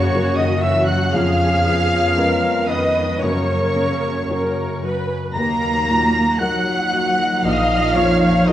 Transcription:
Already playing: F#2 C#3 A#3 C#4 F#4 A#4 C#5 C#6
0.11 F#2 C#3 F#3 C#4 A#4
0.36 D#3 C#4 D#5 D#6
0.61 E3 F#3 A#4 E5 E6
0.86 F#3 C#4 F#5 F#6
1.12 F2 F3 B3 G#4 F5 F6
1.39 C#4
1.65 F3 B4
1.91 C#4
2.17 F2 F3 G#3 C#4 A#4 B4
2.43 C#4
2.69 D#3 G#3 B4 D#5 D#6
2.96 C#4
3.20 F#2 C#3 A#3 A#4 C#5 C#6
3.48 C#4
3.76 C#3 A#4
4.02 C#4
4.28 F#2 C#3 F#3 C#4 A#4
4.55 C#4
4.81 F#3 A#4 B4
5.07 C#4
5.33 D#2 D#3 F#3 A#3 D#4 A#5 A#6
5.60 A#4
5.86 A#2 F#4
6.13 A#4
6.39 F#3 D#4 A#4 F#5 F#6
6.65 A#4
6.93 F#3 F#4
7.18 A#4
7.43 A#1 A#2 F3 D#5 F5 F6
7.69 D#4
7.96 F2 A#4 C#5
8.21 D#4
8.47 D#3 F3 A#3 D#4 A#4 D#5 D#6

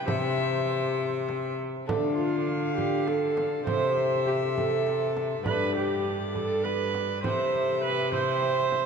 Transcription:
0.05 C3 C4 G4 C5 E5, frame drum
1.29 frame drum
1.86 D3 A3 D4 A4 F5, frame drum
2.15 F4
2.76 G4, frame drum
3.07 A4, frame drum
3.37 frame drum
3.65 C3 C4 E4 C5 E5, frame drum
4.27 G4
4.57 A4, frame drum
4.87 frame drum
5.17 frame drum
5.43 G2 B3 D4 B4 D5, frame drum
5.76 G4
6.35 A4, frame drum
6.64 B4, frame drum
6.94 frame drum
7.23 C3 C4 E4 C5 E5, frame drum
7.84 B4
8.12 C4 E4 C5 E5, frame drum
8.43 frame drum
8.72 frame drum

